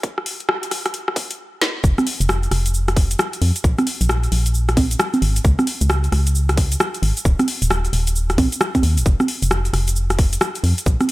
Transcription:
0.03 kick loud
0.03 closed hi-hat medium
0.18 cross-stick medium
0.26 open hi-hat loud
0.40 closed hi-hat soft
0.49 cross-stick loud
0.63 closed hi-hat medium
0.71 cross-stick medium
0.71 open hi-hat loud
0.86 cross-stick medium
0.86 closed hi-hat medium
0.94 closed hi-hat medium
1.08 cross-stick medium
1.16 kick loud
1.16 open hi-hat loud
1.31 closed hi-hat medium
1.62 snare medium
1.84 1.94 F1 loud
1.84 kick loud
1.84 cabasa medium
1.98 cross-stick medium
1.98 high conga medium
1.98 cabasa soft
2.07 open hi-hat loud
2.20 2.48 F1 loud
2.20 closed hi-hat medium
2.20 cabasa medium
2.29 cross-stick loud
2.29 cabasa soft
2.43 closed hi-hat soft
2.43 cabasa soft
2.51 3.15 F1 medium
2.51 cross-stick medium
2.51 open hi-hat loud
2.66 closed hi-hat medium
2.66 cabasa medium
2.74 cabasa medium
2.88 cross-stick medium
2.88 closed hi-hat medium
2.88 cabasa soft
2.97 kick loud
2.97 open hi-hat loud
3.11 closed hi-hat medium
3.11 cabasa medium
3.19 cross-stick loud
3.19 cabasa medium
3.33 closed hi-hat medium
3.33 cabasa soft
3.42 3.52 F2 loud
3.42 open hi-hat loud
3.56 closed hi-hat medium
3.56 cabasa medium
3.64 3.74 A#1 loud
3.64 kick loud
3.64 cabasa soft
3.79 cross-stick medium
3.79 closed hi-hat soft
3.79 high conga medium
3.79 cabasa soft
3.87 open hi-hat loud
4.01 4.28 A#1 loud
4.01 closed hi-hat medium
4.01 cabasa medium
4.09 cross-stick loud
4.09 cabasa medium
4.23 closed hi-hat soft
4.23 cabasa soft
4.32 4.96 A#1 medium
4.32 open hi-hat loud
4.46 closed hi-hat medium
4.46 cabasa medium
4.54 cabasa medium
4.69 cross-stick medium
4.69 closed hi-hat medium
4.69 cabasa soft
4.77 kick loud
4.77 open hi-hat loud
4.77 high conga medium
4.91 closed hi-hat medium
4.91 cabasa medium
5.00 cross-stick loud
5.00 cabasa medium
5.14 closed hi-hat soft
5.14 high conga medium
5.14 cabasa soft
5.22 5.40 G#1 medium
5.22 open hi-hat loud
5.36 closed hi-hat medium
5.36 cabasa medium
5.45 5.55 C#2 loud
5.45 kick loud
5.45 cabasa medium
5.59 cross-stick medium
5.59 high conga medium
5.59 cabasa soft
5.67 open hi-hat loud
5.81 6.09 C#2 loud
5.81 closed hi-hat medium
5.81 cabasa medium
5.90 cross-stick loud
5.90 cabasa medium
6.04 closed hi-hat soft
6.04 cabasa soft
6.12 6.76 C#2 medium
6.12 cross-stick medium
6.12 open hi-hat medium
6.27 closed hi-hat medium
6.27 cabasa medium
6.35 cabasa medium
6.49 cross-stick medium
6.49 closed hi-hat medium
6.49 cabasa soft
6.57 kick loud
6.57 open hi-hat loud
6.72 closed hi-hat medium
6.72 cabasa medium
6.80 cross-stick loud
6.80 cabasa medium
6.94 closed hi-hat medium
6.94 cabasa soft
7.03 7.13 G#1 loud
7.03 open hi-hat medium
7.17 closed hi-hat medium
7.17 cabasa medium
7.25 7.35 D#1 loud
7.25 kick loud
7.25 cabasa medium
7.39 cross-stick medium
7.39 closed hi-hat soft
7.39 high conga medium
7.39 cabasa soft
7.48 open hi-hat loud
7.62 7.89 D#1 loud
7.62 closed hi-hat medium
7.62 cabasa medium
7.71 cross-stick loud
7.71 cabasa medium
7.85 closed hi-hat soft
7.85 cabasa soft
7.93 8.37 D#1 medium
7.93 open hi-hat medium
8.07 closed hi-hat medium
8.07 cabasa medium
8.16 cabasa medium
8.30 cross-stick medium
8.30 closed hi-hat medium
8.30 cabasa soft
8.38 8.48 A#1 medium
8.38 kick loud
8.38 open hi-hat loud
8.38 high conga medium
8.52 closed hi-hat medium
8.52 cabasa medium
8.61 cross-stick loud
8.61 cabasa medium
8.75 kick medium
8.75 closed hi-hat medium
8.75 high conga medium
8.75 cabasa soft
8.83 8.99 D#2 loud
8.83 open hi-hat medium
8.97 9.03 A#1 medium
8.97 closed hi-hat medium
8.97 cabasa medium
9.06 9.16 F1 loud
9.06 kick loud
9.06 cabasa medium
9.20 cross-stick medium
9.20 high conga medium
9.20 cabasa soft
9.28 open hi-hat loud
9.42 9.70 F1 loud
9.42 closed hi-hat medium
9.42 cabasa medium
9.51 cross-stick loud
9.51 cabasa medium
9.65 closed hi-hat soft
9.65 cabasa soft
9.73 10.37 F1 medium
9.73 cross-stick medium
9.73 open hi-hat medium
9.88 closed hi-hat medium
9.88 cabasa medium
9.96 cabasa medium
10.10 cross-stick medium
10.10 closed hi-hat medium
10.10 cabasa soft
10.19 kick loud
10.19 open hi-hat loud
10.33 closed hi-hat medium
10.33 cabasa medium
10.41 cross-stick loud
10.41 cabasa medium
10.55 closed hi-hat medium
10.55 cabasa soft
10.64 10.74 F2 loud
10.64 open hi-hat medium
10.78 closed hi-hat medium
10.78 cabasa medium
10.86 10.96 A#1 loud
10.86 kick loud
10.86 cabasa medium
11.01 cross-stick medium
11.01 closed hi-hat soft
11.01 high conga medium
11.01 cabasa soft

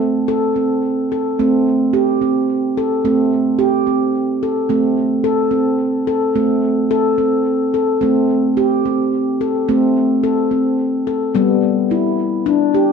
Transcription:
0.00 0.65 A3 medium
0.00 0.28 C4 medium
0.28 0.56 A4 medium
0.56 1.11 C4 medium
1.12 1.39 A4 medium
1.39 2.31 A3 medium
1.39 1.94 C4 medium
1.93 2.21 G4 medium
2.22 2.77 C4 medium
2.77 3.05 A4 medium
3.05 3.97 A3 medium
3.05 3.60 C4 medium
3.59 3.87 G4 medium
3.87 4.42 C4 medium
4.43 4.70 A4 medium
4.69 5.62 A3 medium
4.69 5.25 C4 medium
5.24 5.52 A4 medium
5.51 6.07 C4 medium
6.07 6.36 A4 medium
6.35 7.28 A3 medium
6.35 6.91 C4 medium
6.91 7.19 A4 medium
7.18 7.74 C4 medium
7.74 8.02 A4 medium
8.01 8.95 A3 medium
8.01 8.57 C4 medium
8.57 8.85 G4 medium
8.86 9.41 C4 medium
9.41 9.69 A4 medium
9.69 10.61 A3 medium
9.69 10.24 C4 medium
10.24 10.52 A4 medium
10.51 11.07 C4 medium
11.07 11.35 A4 medium
11.35 12.28 G3 medium
11.35 11.91 B3 medium
11.91 12.47 E4 medium
12.46 12.74 D4 medium
12.75 12.92 G4 medium

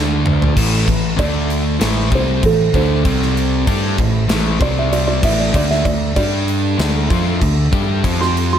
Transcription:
0.00 0.53 D2 medium
0.00 0.55 D3 medium
0.00 0.55 A3 loud
0.00 0.56 D4 loud
0.00 0.56 D4 medium
0.00 0.55 A4 medium
0.00 0.55 A5 medium
0.26 mid tom medium
0.42 floor tom medium
0.55 0.86 A1 medium
0.55 0.85 A2 medium
0.55 0.85 E3 loud
0.55 0.87 A3 loud
0.55 1.18 A3 medium
0.55 1.18 E4 medium
0.55 1.18 B4 medium
0.55 kick loud
0.55 crash loud
0.55 crash medium
0.86 1.17 A1 medium
0.86 1.12 A2 medium
0.86 1.12 E3 medium
0.86 kick medium
0.86 crash medium
1.16 1.77 D2 medium
1.16 1.79 D3 medium
1.16 1.79 A3 medium
1.16 1.79 D4 loud
1.16 1.80 D4 medium
1.16 1.80 A4 medium
1.16 2.10 D5 loud
1.16 1.80 E5 medium
1.16 kick loud
1.16 crash medium
1.50 crash medium
1.79 2.10 A1 loud
1.79 2.10 A2 medium
1.79 2.10 E3 loud
1.79 3.03 A3 medium
1.79 2.11 A3 loud
1.79 3.04 E4 medium
1.79 3.04 C5 medium
1.79 snare loud
1.79 crash medium
2.12 2.41 C2 medium
2.12 2.42 C3 medium
2.12 2.42 G3 loud
2.12 2.42 C4 loud
2.12 2.44 C5 medium
2.12 kick loud
2.12 crash medium
2.43 2.72 A1 medium
2.43 2.68 A2 medium
2.43 2.68 E3 medium
2.43 2.75 A4 medium
2.43 kick medium
2.43 crash medium
2.73 3.03 D2 medium
2.73 3.04 D3 loud
2.73 3.04 A3 loud
2.73 3.04 D4 loud
2.73 3.95 C5 medium
2.73 kick loud
2.73 crash medium
3.04 3.63 C2 loud
3.04 3.66 C3 medium
3.04 3.65 G3 loud
3.04 3.66 C4 loud
3.04 3.68 C4 medium
3.04 3.67 G4 medium
3.04 3.67 D5 medium
3.04 kick loud
3.04 crash medium
3.22 snare soft
3.37 crash medium
3.67 3.96 G2 medium
3.67 3.97 G3 medium
3.67 4.61 A3 medium
3.67 3.98 D4 medium
3.67 4.60 E4 medium
3.67 3.98 G4 loud
3.67 4.60 C5 medium
3.67 kick loud
3.67 crash medium
3.98 4.27 A1 medium
3.98 4.23 A2 medium
3.98 4.23 E3 medium
3.98 kick loud
3.98 crash medium
4.28 4.58 A1 medium
4.28 4.59 A2 medium
4.28 4.59 E3 loud
4.28 4.59 A3 loud
4.28 snare loud
4.28 crash medium
4.59 5.19 C2 loud
4.59 5.21 C3 medium
4.59 5.22 G3 loud
4.59 5.22 C4 medium
4.59 5.23 C4 medium
4.59 5.22 G4 medium
4.59 5.22 D5 medium
4.59 4.76 D5 loud
4.59 kick loud
4.59 crash medium
4.79 4.92 E5 medium
4.93 5.06 D5 loud
4.93 crash medium
5.07 5.22 D5 loud
5.22 5.52 A1 loud
5.22 5.52 A2 loud
5.22 5.52 E3 loud
5.22 5.53 A3 medium
5.22 5.51 A3 loud
5.22 5.53 E4 medium
5.22 5.53 B4 medium
5.22 5.38 E5 loud
5.22 kick loud
5.22 crash loud
5.40 5.54 D5 medium
5.52 5.83 D2 loud
5.52 5.83 D3 loud
5.52 5.83 A3 loud
5.52 5.84 D4 loud
5.52 6.15 D4 medium
5.52 6.78 A4 medium
5.52 5.70 D5 loud
5.52 6.16 E5 medium
5.52 kick loud
5.52 crash medium
5.71 5.85 E5 medium
5.71 snare soft
5.84 6.14 D2 medium
5.84 6.10 D3 medium
5.84 6.10 A3 medium
5.84 6.15 D5 medium
5.84 kick medium
5.84 crash medium
6.16 6.75 G2 loud
6.16 6.77 G3 loud
6.16 6.78 G3 medium
6.16 8.02 D4 medium
6.16 6.77 D4 loud
6.16 6.78 G4 loud
6.16 7.37 D5 loud
6.16 kick loud
6.16 crash medium
6.48 crash medium
6.78 7.08 D2 loud
6.78 7.09 D3 loud
6.78 7.09 A3 loud
6.78 7.09 D4 loud
6.78 8.03 A4 medium
6.78 8.03 E5 medium
6.78 snare loud
6.78 crash medium
7.09 7.40 F2 medium
7.09 7.40 F3 medium
7.09 7.40 C4 loud
7.09 7.40 F4 loud
7.09 kick loud
7.09 crash medium
7.41 7.71 D2 medium
7.41 7.66 D3 medium
7.41 7.66 A3 medium
7.41 kick medium
7.41 crash medium
7.71 8.02 G2 loud
7.71 8.02 G3 loud
7.71 8.03 D4 loud
7.71 8.03 G4 loud
7.71 kick loud
7.71 crash medium
8.04 8.59 F2 loud
8.04 8.59 F3 loud
8.04 8.59 F3 medium
8.04 8.59 C4 loud
8.04 8.59 C4 medium
8.04 8.59 F4 medium
8.04 8.59 G4 medium
8.04 kick loud
8.04 crash medium
8.21 8.35 C6 medium
8.21 snare soft
8.37 crash medium
8.53 8.59 C6 medium

